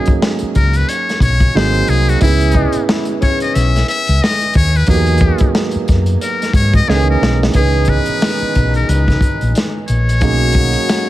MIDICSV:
0, 0, Header, 1, 7, 480
1, 0, Start_track
1, 0, Tempo, 666667
1, 1593, Time_signature, 4, 2, 24, 8
1, 7988, End_track
2, 0, Start_track
2, 0, Title_t, "Muted trumpet"
2, 0, Program_c, 0, 59
2, 0, Note_on_c, 0, 68, 82
2, 128, Note_off_c, 0, 68, 0
2, 408, Note_on_c, 0, 70, 88
2, 551, Note_on_c, 0, 71, 82
2, 562, Note_off_c, 0, 70, 0
2, 640, Note_on_c, 0, 73, 91
2, 651, Note_off_c, 0, 71, 0
2, 877, Note_off_c, 0, 73, 0
2, 882, Note_on_c, 0, 73, 95
2, 1123, Note_on_c, 0, 72, 99
2, 1133, Note_off_c, 0, 73, 0
2, 1363, Note_on_c, 0, 68, 88
2, 1373, Note_off_c, 0, 72, 0
2, 1509, Note_on_c, 0, 66, 86
2, 1519, Note_off_c, 0, 68, 0
2, 1598, Note_off_c, 0, 66, 0
2, 1603, Note_on_c, 0, 64, 86
2, 2050, Note_off_c, 0, 64, 0
2, 2322, Note_on_c, 0, 73, 105
2, 2453, Note_off_c, 0, 73, 0
2, 2462, Note_on_c, 0, 75, 91
2, 2553, Note_on_c, 0, 76, 94
2, 2564, Note_off_c, 0, 75, 0
2, 2793, Note_off_c, 0, 76, 0
2, 2801, Note_on_c, 0, 76, 103
2, 3041, Note_on_c, 0, 75, 110
2, 3052, Note_off_c, 0, 76, 0
2, 3277, Note_off_c, 0, 75, 0
2, 3287, Note_on_c, 0, 73, 97
2, 3430, Note_on_c, 0, 71, 86
2, 3441, Note_off_c, 0, 73, 0
2, 3519, Note_off_c, 0, 71, 0
2, 3526, Note_on_c, 0, 68, 86
2, 3971, Note_off_c, 0, 68, 0
2, 4481, Note_on_c, 0, 70, 78
2, 4701, Note_off_c, 0, 70, 0
2, 4719, Note_on_c, 0, 73, 98
2, 4852, Note_off_c, 0, 73, 0
2, 4865, Note_on_c, 0, 75, 98
2, 4961, Note_on_c, 0, 68, 104
2, 4972, Note_off_c, 0, 75, 0
2, 5103, Note_off_c, 0, 68, 0
2, 5112, Note_on_c, 0, 70, 78
2, 5329, Note_off_c, 0, 70, 0
2, 5443, Note_on_c, 0, 68, 97
2, 5681, Note_on_c, 0, 71, 101
2, 5692, Note_off_c, 0, 68, 0
2, 6300, Note_off_c, 0, 71, 0
2, 6304, Note_on_c, 0, 70, 79
2, 6400, Note_on_c, 0, 71, 77
2, 6411, Note_off_c, 0, 70, 0
2, 6877, Note_off_c, 0, 71, 0
2, 7116, Note_on_c, 0, 73, 118
2, 7988, Note_off_c, 0, 73, 0
2, 7988, End_track
3, 0, Start_track
3, 0, Title_t, "Grand piano"
3, 0, Program_c, 1, 0
3, 0, Control_c, 1, 64, 127
3, 0, Note_on_c, 1, 54, 61
3, 0, Note_on_c, 1, 58, 52
3, 0, Note_on_c, 1, 61, 53
3, 0, Note_on_c, 1, 63, 50
3, 0, Note_on_c, 1, 68, 61
3, 1083, Note_off_c, 1, 54, 0
3, 1086, Note_off_c, 1, 58, 0
3, 1089, Note_off_c, 1, 61, 0
3, 1092, Note_off_c, 1, 63, 0
3, 1096, Note_off_c, 1, 68, 0
3, 1116, Note_on_c, 1, 54, 65
3, 1118, Note_on_c, 1, 58, 53
3, 1123, Note_on_c, 1, 60, 51
3, 1124, Control_c, 1, 64, 0
3, 1124, Note_on_c, 1, 63, 55
3, 1129, Note_on_c, 1, 68, 67
3, 1261, Control_c, 1, 64, 127
3, 1589, Note_on_c, 1, 64, 65
3, 1595, Note_off_c, 1, 54, 0
3, 1596, Note_off_c, 1, 58, 0
3, 1596, Note_on_c, 1, 59, 55
3, 1598, Note_off_c, 1, 60, 0
3, 1599, Note_off_c, 1, 63, 0
3, 1601, Note_off_c, 1, 68, 0
3, 1602, Control_c, 1, 64, 0
3, 1602, Note_on_c, 1, 61, 50
3, 1614, Note_on_c, 1, 68, 71
3, 1751, Control_c, 1, 64, 127
3, 3483, Note_off_c, 1, 64, 0
3, 3486, Note_off_c, 1, 59, 0
3, 3489, Note_off_c, 1, 61, 0
3, 3495, Note_off_c, 1, 68, 0
3, 3508, Note_on_c, 1, 54, 66
3, 3514, Note_on_c, 1, 58, 53
3, 3519, Note_on_c, 1, 59, 50
3, 3522, Control_c, 1, 64, 0
3, 3523, Note_on_c, 1, 63, 56
3, 3530, Note_on_c, 1, 67, 52
3, 3577, Note_on_c, 1, 68, 68
3, 3579, Note_off_c, 1, 67, 0
3, 3642, Control_c, 1, 64, 127
3, 4922, Note_off_c, 1, 54, 0
3, 4925, Note_off_c, 1, 58, 0
3, 4927, Note_off_c, 1, 59, 0
3, 4930, Note_off_c, 1, 63, 0
3, 4952, Note_on_c, 1, 51, 53
3, 4953, Note_off_c, 1, 68, 0
3, 4953, Note_on_c, 1, 58, 52
3, 4958, Note_on_c, 1, 61, 61
3, 4961, Note_on_c, 1, 63, 58
3, 4963, Note_on_c, 1, 68, 66
3, 4964, Control_c, 1, 64, 0
3, 4998, Note_on_c, 1, 52, 61
3, 5009, Note_off_c, 1, 51, 0
3, 5090, Control_c, 1, 64, 127
3, 5420, Note_off_c, 1, 52, 0
3, 5430, Note_on_c, 1, 52, 56
3, 5432, Note_off_c, 1, 61, 0
3, 5433, Note_off_c, 1, 58, 0
3, 5437, Note_off_c, 1, 63, 0
3, 5437, Note_on_c, 1, 59, 50
3, 5438, Note_off_c, 1, 68, 0
3, 5442, Note_on_c, 1, 61, 48
3, 5443, Control_c, 1, 64, 0
3, 5448, Note_on_c, 1, 63, 51
3, 5454, Note_on_c, 1, 68, 63
3, 5589, Control_c, 1, 64, 127
3, 7323, Note_off_c, 1, 52, 0
3, 7327, Note_off_c, 1, 59, 0
3, 7329, Note_off_c, 1, 61, 0
3, 7332, Note_off_c, 1, 63, 0
3, 7335, Note_off_c, 1, 68, 0
3, 7348, Note_on_c, 1, 54, 51
3, 7355, Note_on_c, 1, 58, 56
3, 7360, Note_on_c, 1, 61, 50
3, 7363, Control_c, 1, 64, 0
3, 7365, Note_on_c, 1, 63, 51
3, 7371, Note_on_c, 1, 68, 55
3, 7483, Control_c, 1, 64, 127
3, 7988, Note_off_c, 1, 54, 0
3, 7988, Note_off_c, 1, 58, 0
3, 7988, Note_off_c, 1, 61, 0
3, 7988, Note_off_c, 1, 63, 0
3, 7988, Note_off_c, 1, 68, 0
3, 7988, End_track
4, 0, Start_track
4, 0, Title_t, "Horn section"
4, 0, Program_c, 2, 61
4, 1831, Note_on_c, 2, 52, 72
4, 1831, Note_on_c, 2, 68, 82
4, 1832, Note_on_c, 2, 63, 65
4, 1832, Note_on_c, 2, 75, 71
4, 2024, Note_off_c, 2, 52, 0
4, 2024, Note_off_c, 2, 63, 0
4, 2024, Note_off_c, 2, 68, 0
4, 2024, Note_off_c, 2, 75, 0
4, 2071, Note_on_c, 2, 47, 65
4, 2071, Note_on_c, 2, 56, 71
4, 2072, Note_on_c, 2, 52, 65
4, 2072, Note_on_c, 2, 64, 70
4, 2264, Note_off_c, 2, 47, 0
4, 2264, Note_off_c, 2, 56, 0
4, 2265, Note_off_c, 2, 52, 0
4, 2265, Note_off_c, 2, 64, 0
4, 2309, Note_on_c, 2, 44, 74
4, 2309, Note_on_c, 2, 52, 69
4, 2310, Note_on_c, 2, 49, 74
4, 2310, Note_on_c, 2, 61, 81
4, 2763, Note_off_c, 2, 44, 0
4, 2763, Note_off_c, 2, 49, 0
4, 2763, Note_off_c, 2, 52, 0
4, 2763, Note_off_c, 2, 61, 0
4, 5431, Note_on_c, 2, 47, 63
4, 5431, Note_on_c, 2, 56, 60
4, 5432, Note_on_c, 2, 51, 69
4, 5432, Note_on_c, 2, 63, 75
4, 7083, Note_off_c, 2, 47, 0
4, 7084, Note_off_c, 2, 51, 0
4, 7084, Note_off_c, 2, 56, 0
4, 7084, Note_off_c, 2, 63, 0
4, 7351, Note_on_c, 2, 61, 70
4, 7352, Note_on_c, 2, 51, 65
4, 7352, Note_on_c, 2, 54, 63
4, 7352, Note_on_c, 2, 66, 69
4, 7988, Note_off_c, 2, 51, 0
4, 7988, Note_off_c, 2, 54, 0
4, 7988, Note_off_c, 2, 61, 0
4, 7988, Note_off_c, 2, 66, 0
4, 7988, End_track
5, 0, Start_track
5, 0, Title_t, "Fingered electric bass"
5, 0, Program_c, 3, 33
5, 406, Note_on_c, 3, 37, 71
5, 590, Note_off_c, 3, 37, 0
5, 871, Note_on_c, 3, 35, 86
5, 1061, Note_off_c, 3, 35, 0
5, 1116, Note_on_c, 3, 32, 89
5, 1304, Note_off_c, 3, 32, 0
5, 1355, Note_on_c, 3, 36, 78
5, 1544, Note_off_c, 3, 36, 0
5, 1600, Note_on_c, 3, 37, 95
5, 1901, Note_off_c, 3, 37, 0
5, 2560, Note_on_c, 3, 35, 91
5, 2747, Note_off_c, 3, 35, 0
5, 2942, Note_on_c, 3, 37, 90
5, 3015, Note_off_c, 3, 37, 0
5, 3284, Note_on_c, 3, 39, 87
5, 3469, Note_off_c, 3, 39, 0
5, 3516, Note_on_c, 3, 40, 87
5, 3819, Note_off_c, 3, 40, 0
5, 4242, Note_on_c, 3, 42, 76
5, 4428, Note_off_c, 3, 42, 0
5, 4708, Note_on_c, 3, 44, 89
5, 4899, Note_off_c, 3, 44, 0
5, 4958, Note_on_c, 3, 37, 101
5, 5145, Note_off_c, 3, 37, 0
5, 5196, Note_on_c, 3, 35, 95
5, 5384, Note_off_c, 3, 35, 0
5, 5438, Note_on_c, 3, 37, 76
5, 5740, Note_off_c, 3, 37, 0
5, 6167, Note_on_c, 3, 35, 65
5, 6351, Note_off_c, 3, 35, 0
5, 6399, Note_on_c, 3, 37, 89
5, 6586, Note_off_c, 3, 37, 0
5, 6783, Note_on_c, 3, 34, 76
5, 6856, Note_off_c, 3, 34, 0
5, 7122, Note_on_c, 3, 34, 72
5, 7361, Note_off_c, 3, 34, 0
5, 7361, Note_on_c, 3, 35, 82
5, 7736, Note_off_c, 3, 35, 0
5, 7988, End_track
6, 0, Start_track
6, 0, Title_t, "Muted fingered electric bass strokes"
6, 58, Note_on_c, 9, 29, 53
6, 130, Note_off_c, 9, 29, 0
6, 304, Note_on_c, 9, 29, 47
6, 376, Note_off_c, 9, 29, 0
6, 1983, Note_on_c, 9, 29, 49
6, 2055, Note_off_c, 9, 29, 0
6, 3897, Note_on_c, 9, 29, 48
6, 3969, Note_off_c, 9, 29, 0
6, 4143, Note_on_c, 9, 29, 48
6, 4215, Note_off_c, 9, 29, 0
6, 5822, Note_on_c, 9, 29, 45
6, 5894, Note_off_c, 9, 29, 0
6, 6061, Note_on_c, 9, 29, 42
6, 6133, Note_off_c, 9, 29, 0
6, 7988, End_track
7, 0, Start_track
7, 0, Title_t, "Drums"
7, 40, Note_on_c, 9, 42, 53
7, 55, Note_on_c, 9, 36, 87
7, 112, Note_off_c, 9, 42, 0
7, 127, Note_off_c, 9, 36, 0
7, 162, Note_on_c, 9, 38, 107
7, 234, Note_off_c, 9, 38, 0
7, 279, Note_on_c, 9, 42, 47
7, 351, Note_off_c, 9, 42, 0
7, 397, Note_on_c, 9, 42, 56
7, 401, Note_on_c, 9, 36, 75
7, 469, Note_off_c, 9, 42, 0
7, 473, Note_off_c, 9, 36, 0
7, 529, Note_on_c, 9, 42, 48
7, 601, Note_off_c, 9, 42, 0
7, 638, Note_on_c, 9, 42, 81
7, 710, Note_off_c, 9, 42, 0
7, 786, Note_on_c, 9, 42, 44
7, 792, Note_on_c, 9, 38, 30
7, 858, Note_off_c, 9, 42, 0
7, 864, Note_off_c, 9, 38, 0
7, 867, Note_on_c, 9, 36, 77
7, 876, Note_on_c, 9, 42, 67
7, 939, Note_off_c, 9, 36, 0
7, 948, Note_off_c, 9, 42, 0
7, 1011, Note_on_c, 9, 36, 67
7, 1011, Note_on_c, 9, 42, 45
7, 1083, Note_off_c, 9, 36, 0
7, 1083, Note_off_c, 9, 42, 0
7, 1131, Note_on_c, 9, 38, 92
7, 1203, Note_off_c, 9, 38, 0
7, 1251, Note_on_c, 9, 42, 41
7, 1323, Note_off_c, 9, 42, 0
7, 1349, Note_on_c, 9, 42, 58
7, 1421, Note_off_c, 9, 42, 0
7, 1501, Note_on_c, 9, 42, 44
7, 1573, Note_off_c, 9, 42, 0
7, 1589, Note_on_c, 9, 42, 81
7, 1595, Note_on_c, 9, 36, 104
7, 1661, Note_off_c, 9, 42, 0
7, 1667, Note_off_c, 9, 36, 0
7, 1733, Note_on_c, 9, 42, 44
7, 1805, Note_off_c, 9, 42, 0
7, 1811, Note_on_c, 9, 42, 57
7, 1833, Note_on_c, 9, 36, 92
7, 1883, Note_off_c, 9, 42, 0
7, 1905, Note_off_c, 9, 36, 0
7, 1962, Note_on_c, 9, 42, 55
7, 2034, Note_off_c, 9, 42, 0
7, 2080, Note_on_c, 9, 38, 116
7, 2152, Note_off_c, 9, 38, 0
7, 2198, Note_on_c, 9, 42, 48
7, 2270, Note_off_c, 9, 42, 0
7, 2318, Note_on_c, 9, 42, 60
7, 2322, Note_on_c, 9, 36, 69
7, 2390, Note_off_c, 9, 42, 0
7, 2394, Note_off_c, 9, 36, 0
7, 2449, Note_on_c, 9, 42, 50
7, 2521, Note_off_c, 9, 42, 0
7, 2559, Note_on_c, 9, 42, 79
7, 2631, Note_off_c, 9, 42, 0
7, 2707, Note_on_c, 9, 42, 44
7, 2713, Note_on_c, 9, 38, 30
7, 2779, Note_off_c, 9, 42, 0
7, 2785, Note_off_c, 9, 38, 0
7, 2796, Note_on_c, 9, 42, 76
7, 2868, Note_off_c, 9, 42, 0
7, 2933, Note_on_c, 9, 42, 42
7, 3005, Note_off_c, 9, 42, 0
7, 3051, Note_on_c, 9, 38, 89
7, 3123, Note_off_c, 9, 38, 0
7, 3174, Note_on_c, 9, 42, 44
7, 3246, Note_off_c, 9, 42, 0
7, 3266, Note_on_c, 9, 42, 61
7, 3279, Note_on_c, 9, 36, 100
7, 3338, Note_off_c, 9, 42, 0
7, 3351, Note_off_c, 9, 36, 0
7, 3420, Note_on_c, 9, 42, 50
7, 3492, Note_off_c, 9, 42, 0
7, 3504, Note_on_c, 9, 42, 83
7, 3512, Note_on_c, 9, 36, 99
7, 3576, Note_off_c, 9, 42, 0
7, 3584, Note_off_c, 9, 36, 0
7, 3646, Note_on_c, 9, 42, 45
7, 3718, Note_off_c, 9, 42, 0
7, 3727, Note_on_c, 9, 42, 63
7, 3750, Note_on_c, 9, 36, 100
7, 3799, Note_off_c, 9, 42, 0
7, 3822, Note_off_c, 9, 36, 0
7, 3876, Note_on_c, 9, 42, 57
7, 3893, Note_on_c, 9, 36, 92
7, 3948, Note_off_c, 9, 42, 0
7, 3965, Note_off_c, 9, 36, 0
7, 3995, Note_on_c, 9, 38, 106
7, 4067, Note_off_c, 9, 38, 0
7, 4114, Note_on_c, 9, 42, 48
7, 4186, Note_off_c, 9, 42, 0
7, 4233, Note_on_c, 9, 42, 62
7, 4239, Note_on_c, 9, 36, 85
7, 4249, Note_on_c, 9, 38, 28
7, 4305, Note_off_c, 9, 42, 0
7, 4311, Note_off_c, 9, 36, 0
7, 4321, Note_off_c, 9, 38, 0
7, 4364, Note_on_c, 9, 42, 44
7, 4436, Note_off_c, 9, 42, 0
7, 4475, Note_on_c, 9, 42, 77
7, 4547, Note_off_c, 9, 42, 0
7, 4623, Note_on_c, 9, 42, 50
7, 4628, Note_on_c, 9, 38, 31
7, 4695, Note_off_c, 9, 42, 0
7, 4700, Note_off_c, 9, 38, 0
7, 4705, Note_on_c, 9, 36, 98
7, 4710, Note_on_c, 9, 42, 68
7, 4777, Note_off_c, 9, 36, 0
7, 4782, Note_off_c, 9, 42, 0
7, 4850, Note_on_c, 9, 36, 73
7, 4850, Note_on_c, 9, 42, 40
7, 4922, Note_off_c, 9, 36, 0
7, 4922, Note_off_c, 9, 42, 0
7, 4965, Note_on_c, 9, 38, 57
7, 5037, Note_off_c, 9, 38, 0
7, 5206, Note_on_c, 9, 38, 91
7, 5278, Note_off_c, 9, 38, 0
7, 5352, Note_on_c, 9, 38, 97
7, 5424, Note_off_c, 9, 38, 0
7, 5425, Note_on_c, 9, 42, 75
7, 5433, Note_on_c, 9, 36, 97
7, 5497, Note_off_c, 9, 42, 0
7, 5505, Note_off_c, 9, 36, 0
7, 5651, Note_on_c, 9, 42, 55
7, 5672, Note_on_c, 9, 36, 96
7, 5723, Note_off_c, 9, 42, 0
7, 5744, Note_off_c, 9, 36, 0
7, 5801, Note_on_c, 9, 42, 50
7, 5873, Note_off_c, 9, 42, 0
7, 5919, Note_on_c, 9, 42, 77
7, 5920, Note_on_c, 9, 38, 112
7, 5991, Note_off_c, 9, 42, 0
7, 5992, Note_off_c, 9, 38, 0
7, 6038, Note_on_c, 9, 42, 38
7, 6110, Note_off_c, 9, 42, 0
7, 6157, Note_on_c, 9, 42, 62
7, 6163, Note_on_c, 9, 36, 74
7, 6229, Note_off_c, 9, 42, 0
7, 6235, Note_off_c, 9, 36, 0
7, 6292, Note_on_c, 9, 42, 40
7, 6364, Note_off_c, 9, 42, 0
7, 6401, Note_on_c, 9, 42, 74
7, 6473, Note_off_c, 9, 42, 0
7, 6538, Note_on_c, 9, 36, 80
7, 6550, Note_on_c, 9, 42, 33
7, 6556, Note_on_c, 9, 38, 29
7, 6610, Note_off_c, 9, 36, 0
7, 6622, Note_off_c, 9, 42, 0
7, 6628, Note_off_c, 9, 38, 0
7, 6629, Note_on_c, 9, 36, 83
7, 6639, Note_on_c, 9, 42, 61
7, 6701, Note_off_c, 9, 36, 0
7, 6711, Note_off_c, 9, 42, 0
7, 6775, Note_on_c, 9, 42, 39
7, 6847, Note_off_c, 9, 42, 0
7, 6878, Note_on_c, 9, 42, 72
7, 6894, Note_on_c, 9, 38, 90
7, 6950, Note_off_c, 9, 42, 0
7, 6966, Note_off_c, 9, 38, 0
7, 7112, Note_on_c, 9, 42, 60
7, 7184, Note_off_c, 9, 42, 0
7, 7265, Note_on_c, 9, 42, 47
7, 7337, Note_off_c, 9, 42, 0
7, 7352, Note_on_c, 9, 42, 74
7, 7356, Note_on_c, 9, 36, 101
7, 7424, Note_off_c, 9, 42, 0
7, 7428, Note_off_c, 9, 36, 0
7, 7576, Note_on_c, 9, 42, 57
7, 7595, Note_on_c, 9, 36, 88
7, 7648, Note_off_c, 9, 42, 0
7, 7667, Note_off_c, 9, 36, 0
7, 7727, Note_on_c, 9, 42, 47
7, 7799, Note_off_c, 9, 42, 0
7, 7843, Note_on_c, 9, 42, 82
7, 7844, Note_on_c, 9, 38, 119
7, 7915, Note_off_c, 9, 42, 0
7, 7916, Note_off_c, 9, 38, 0
7, 7988, End_track
0, 0, End_of_file